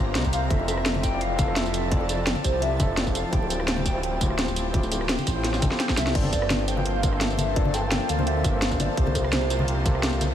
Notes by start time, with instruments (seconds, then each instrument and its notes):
Already playing: detuned saw bass G1, ambient pad F3 C5 A#5, tine electric piano A#3 C4 A#4
0.00 tine electric piano F4 G4
0.15 detuned saw bass C2, snare, closed hi-hat
0.25 kick, tambourine
0.33 soft synth lead F5, closed hi-hat, tambourine
0.48 detuned saw bass F1, tine electric piano C4 E4 F4, soft synth lead E5, ambient pad A5, kick, closed hi-hat, high conga
0.52 tine electric piano A4
0.59 high bongo
0.68 closed hi-hat, tambourine, high bongo
0.78 cross-stick
0.86 snare, closed hi-hat
0.95 high bongo, high conga
1.03 soft synth lead G5, kick, closed hi-hat, tambourine
1.12 tine electric piano C4 E4 F4 D5
1.21 detuned saw bass F1, soft synth lead F5, closed hi-hat
1.36 tine electric piano C4 E4 F4, kick, closed hi-hat, tambourine, high conga
1.41 tine electric piano A4
1.48 cross-stick
1.56 soft synth lead E5, snare, closed hi-hat
1.66 detuned saw bass F1, tambourine
1.74 closed hi-hat, tambourine
1.89 tine electric piano C4 E4 F4, soft synth lead D5, kick, closed hi-hat, high conga
1.94 tine electric piano A4
2.01 high bongo
2.09 soft synth lead D5, closed hi-hat, tambourine, high bongo
2.27 snare, closed hi-hat
2.36 high conga
2.44 detuned saw bass C2, soft synth lead C5, kick, closed hi-hat, tambourine
2.53 tine electric piano C4 E4 F4 D5
2.62 soft synth lead E5, closed hi-hat
2.78 detuned saw bass F1, tine electric piano C4 E4 F4, kick, closed hi-hat, tambourine, high conga
2.82 tine electric piano A4
2.97 snare, closed hi-hat
3.07 kick, tambourine
3.15 detuned saw bass F1, soft synth lead F5, closed hi-hat, tambourine
3.31 detuned saw bass D1, tine electric piano C4 E4 F4, ambient pad C5 G5, soft synth lead G5, kick, closed hi-hat, high conga
3.35 tine electric piano G4
3.42 high bongo
3.50 closed hi-hat, tambourine, high bongo
3.60 cross-stick
3.68 snare, closed hi-hat
3.76 high bongo, high conga
3.86 kick, closed hi-hat, tambourine
3.94 tine electric piano C4 E4 F4 C5
4.03 detuned saw bass D1, closed hi-hat
4.19 tine electric piano C4 E4 F4, kick, closed hi-hat, tambourine, high conga
4.23 tine electric piano G4
4.30 cross-stick
4.39 snare, closed hi-hat
4.48 detuned saw bass D1, tambourine
4.56 closed hi-hat, tambourine
4.72 tine electric piano C4 E4 F4, kick, closed hi-hat, high conga
4.76 tine electric piano G4
4.83 tambourine, high bongo
4.92 closed hi-hat, tambourine, high bongo
5.01 cross-stick
5.09 snare, closed hi-hat
5.18 tambourine, high bongo, high conga
5.27 detuned saw bass A1, kick, cross-stick, closed hi-hat, tambourine
5.35 tine electric piano C4 E4 F4 C5
5.44 snare, closed hi-hat
5.54 snare, tambourine
5.61 detuned saw bass F1, tine electric piano C4 E4 F4 A4, kick, closed hi-hat, tambourine, high conga
5.70 tine electric piano C4 E4 F4, snare
5.74 tine electric piano G4
5.80 snare, closed hi-hat
5.89 kick, snare, tambourine
5.97 detuned saw bass C2, soft synth lead E5, snare, closed hi-hat, tambourine
6.07 snare
6.13 detuned saw bass G1, ambient pad F3 A#3 C5 A5, tine electric piano A#3 C4 F4, soft synth lead D5, kick, closed hi-hat, crash
6.17 tine electric piano A4
6.24 high bongo, high conga
6.32 kick, closed hi-hat, tambourine, high bongo
6.42 cross-stick
6.50 snare, closed hi-hat, high conga
6.60 high bongo
6.68 soft synth lead G5, closed hi-hat, tambourine
6.76 tine electric piano A#3 C4 F4 C5, high conga
6.86 detuned saw bass G1, soft synth lead F5, closed hi-hat
7.02 tine electric piano A#3 C4 F4 A#4, kick, closed hi-hat, tambourine, high conga
7.11 tine electric piano A#3 C4 F4, cross-stick
7.15 tine electric piano A4
7.21 soft synth lead E5, snare, closed hi-hat
7.30 detuned saw bass G1, tambourine
7.38 soft synth lead E5, closed hi-hat, tambourine, high conga
7.54 tine electric piano A#3 C4 F4, soft synth lead D5, kick, closed hi-hat
7.59 tine electric piano A4
7.65 high bongo, high conga
7.74 soft synth lead G5, closed hi-hat, tambourine, high bongo
7.81 soft synth lead A5
7.88 soft synth lead G5, snare, closed hi-hat, high conga
8.01 high bongo
8.09 detuned saw bass D2, soft synth lead F5, closed hi-hat, tambourine
8.18 tine electric piano A#3 C4 F4 C5, high conga
8.27 soft synth lead E5, closed hi-hat
8.44 detuned saw bass G1, tine electric piano A#3 C4 F4 A#4, kick, closed hi-hat, tambourine, high conga
8.52 tine electric piano A#3 C4 F4
8.56 tine electric piano A4
8.62 snare, closed hi-hat
8.71 kick, tambourine
8.80 detuned saw bass G1, soft synth lead D5, closed hi-hat, tambourine, high conga
8.96 detuned saw bass C2, tine electric piano A#3 C4 F4, soft synth lead C5, ambient pad A#5, kick, closed hi-hat
9.00 tine electric piano G4
9.06 high bongo, high conga
9.15 kick, closed hi-hat, tambourine, high bongo
9.24 cross-stick
9.33 snare, closed hi-hat, high conga
9.42 high bongo
9.50 closed hi-hat, tambourine
9.59 tine electric piano A#3 C4 F4 A#4, high conga
9.68 detuned saw bass C2, closed hi-hat
9.85 tine electric piano A#3 C4 F4 A4, kick, closed hi-hat, tambourine, high conga
9.93 tine electric piano A#3 C4 F4, cross-stick
9.97 tine electric piano G4
10.03 snare, closed hi-hat
10.13 detuned saw bass C2, tambourine
10.21 closed hi-hat, tambourine, high conga